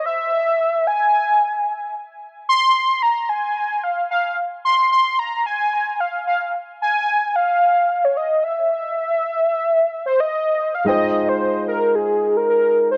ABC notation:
X:1
M:4/4
L:1/16
Q:"Swing 16ths" 1/4=111
K:Fm
V:1 name="Soft synth lead"
=e6 a8 z2 | z2 c'4 b2 a4 f2 f2 | z2 c'2 c'2 b2 a4 f2 f2 | z2 a4 f4- f d e2 =e2- |
=e8- e2 c _e4 f | e3 c3 B2 A3 B B3 c |]
V:2 name="Grand piano"
z16 | z16 | z16 | z16 |
z16 | [A,EFcg]16 |]